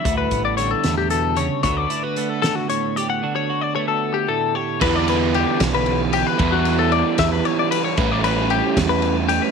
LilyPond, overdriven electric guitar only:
\new Staff \with { instrumentName = "Overdriven electric guitar" } { \clef bass \time 6/8 \key e \dorian \tempo 4. = 76 r2. | r2. | r2. | <e g b e'>2. |
<e g b e'>2. | <a, e g cis' e'>2. | }